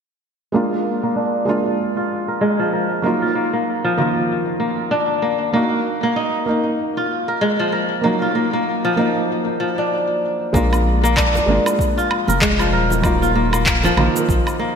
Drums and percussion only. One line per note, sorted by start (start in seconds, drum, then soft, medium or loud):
10.54 kick loud
10.54 shaker medium
10.72 high conga medium
10.72 low woodblock medium
10.72 shaker soft
11.05 shaker medium
11.16 kick loud
11.16 clap medium
11.16 low woodblock medium
11.16 shaker soft
11.34 high bongo medium
11.34 low conga medium
11.34 shaker soft
11.66 high bongo medium
11.66 low woodblock medium
11.66 shaker medium
11.79 kick medium
11.79 shaker soft
11.99 shaker soft
12.11 low woodblock medium
12.28 high conga medium
12.28 low conga medium
12.28 shaker medium
12.41 kick loud
12.41 clap loud
12.41 shaker medium
12.59 low woodblock medium
12.59 shaker soft
12.90 high bongo medium
12.90 low conga medium
12.90 shaker medium
13.04 kick loud
13.04 low woodblock medium
13.04 shaker medium
13.22 high conga medium
13.22 shaker soft
13.53 low woodblock medium
13.53 shaker medium
13.66 kick loud
13.66 clap medium
13.66 shaker medium
13.84 high bongo medium
13.84 low conga medium
13.84 shaker soft
13.97 low woodblock medium
14.16 high bongo medium
14.16 shaker medium
14.29 kick loud
14.29 shaker medium
14.47 low woodblock medium
14.47 shaker soft